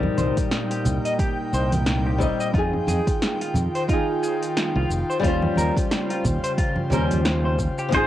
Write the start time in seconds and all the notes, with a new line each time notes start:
Already playing: A#2 G3 A#3 C4 D#4 A#4 G5
0.03 high conga
0.18 C2 C5, open hi-hat, high conga, shaker
0.37 kick, open hi-hat, shaker
0.51 snare, open hi-hat, shaker
0.71 G4, open hi-hat
0.85 C2, open hi-hat, low conga, shaker
1.05 D#5, open hi-hat, shaker
1.19 G4, kick, open hi-hat, shaker
1.53 C2 C5, shaker
1.72 open hi-hat, high conga, shaker
1.86 snare, open hi-hat, shaker
2.07 G4
2.18 G3 C4 D#4 D#5, kick, shaker
2.40 D#5, shaker
2.53 F2 D#3 D#4 F4, kick, open hi-hat, shaker
2.58 G#4
2.73 high conga
2.87 F2 G#4, open hi-hat, high conga, shaker
3.07 kick, open hi-hat, shaker
3.22 snare, open hi-hat, shaker
3.41 F4, open hi-hat
3.54 F2, open hi-hat, low conga, shaker
3.75 C5, open hi-hat, shaker
3.88 D#4 F4, kick, open hi-hat, shaker
3.93 G#4
4.23 G#4, shaker
4.43 open hi-hat, shaker
4.57 snare, open hi-hat, shaker
4.76 C2 F4
4.90 F1, shaker
5.10 C5, shaker
5.20 D#2 G3 C#4 F4, kick
5.24 C#3 F4 C5, open hi-hat, shaker
5.42 high conga
5.56 D#2 A#4, open hi-hat, high conga, shaker
5.77 kick, open hi-hat, shaker
5.91 snare, open hi-hat, shaker
6.10 F4, open hi-hat
6.24 D#2, kick, open hi-hat, low conga, shaker
6.44 C5, open hi-hat, shaker
6.58 F4, kick, open hi-hat, shaker
6.76 high conga
6.90 D#2 G3 C#4 F4 A#4 C5, open hi-hat, low conga, shaker
7.11 open hi-hat, high conga, shaker
7.25 snare, open hi-hat, shaker
7.45 C5
7.59 kick, shaker
7.78 G4, shaker
7.89 C3 F3 G#3 C4 D#4 F4, kick, open hi-hat
7.93 G#1 D#4 F4 G#4 C5, shaker